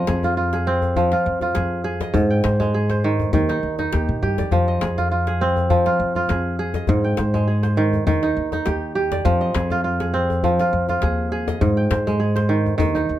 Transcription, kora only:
Already playing: F3 G4 D#5
0.08 G#4
0.24 F4
0.37 F4
0.53 G#4
0.67 C4
0.97 F3
1.13 F4
1.42 F4
1.54 G#4
1.84 G#4
2.01 D#5
2.14 G#2
2.30 G5
2.44 C5
2.60 G#3
2.74 G#4
2.90 C5
3.04 D#3
3.34 D#3
3.49 D#4
3.79 D#4
3.93 G4
4.23 G4
4.39 D5
4.52 F3
4.68 D#5
4.82 G#4
4.98 F4
5.11 F4
5.28 G#4
5.41 C4
5.70 F3
5.86 F4
6.16 F4
6.30 G#4
6.59 G#4
6.75 D#5
6.89 G#2
7.04 G5
7.18 C5
7.34 G#3
7.47 G#4
7.63 C5
7.77 D#3
8.07 D#3
8.23 D#4
8.53 D#4
8.66 G4
8.95 G4
9.12 D5
9.25 F3
9.41 D#5
9.55 G#4
9.71 F4
9.84 F4
10.00 G#4
10.14 C4
10.44 F3
10.60 F4
10.89 F4
11.03 G#4
11.32 G#4
11.48 D#5
11.61 G#2
11.77 G5
11.91 C5
12.07 G#3
12.20 G#4
12.36 C5
12.49 D#3
12.78 D#3
12.95 D#4

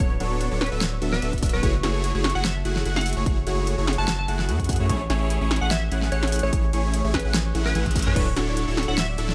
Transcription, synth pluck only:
0.61 B4
1.12 B4
1.53 B4
2.35 F#5
2.45 E5
2.96 F#5
3.98 A5
4.08 A5
4.19 A5
5.61 F#5
5.71 E5
6.12 C#5
6.43 C#5
6.53 C#5
7.14 B4
7.66 B4
8.06 B4
8.88 F#5
8.98 E5

